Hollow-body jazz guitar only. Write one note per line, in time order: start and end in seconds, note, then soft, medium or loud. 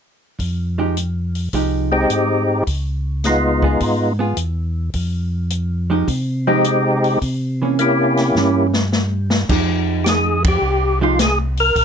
0.78 0.95 F3 soft
0.78 0.95 G#3 soft
0.78 0.95 D#4 soft
0.78 0.95 G4 soft
1.54 1.88 F3 soft
1.54 1.89 G#3 soft
1.54 1.89 D#4 soft
1.54 1.89 G4 soft
3.63 3.79 B3 medium
3.63 3.80 F4 medium
3.63 3.80 G#4 medium
4.19 4.36 B3 soft
4.19 4.36 F4 medium
4.19 4.36 G#4 medium
5.90 6.06 F3 soft
5.90 6.07 G#3 medium
5.90 6.07 D#4 medium
5.90 6.07 G4 soft
6.47 6.63 F3 soft
6.47 6.64 G#3 medium
6.47 6.64 D#4 medium
6.47 6.64 G4 medium
7.62 7.77 E3 soft
7.62 7.78 A#3 soft
7.62 7.78 C#4 soft
8.37 8.71 E3 soft
8.37 8.71 A#3 soft
8.37 8.71 C#4 medium
9.49 10.37 F3 soft
9.49 10.37 G#3 medium
9.49 10.37 D#4 medium
9.49 10.37 G4 medium
11.01 11.18 F3 medium
11.01 11.18 G#3 medium
11.01 11.18 D#4 medium
11.01 11.18 G4 medium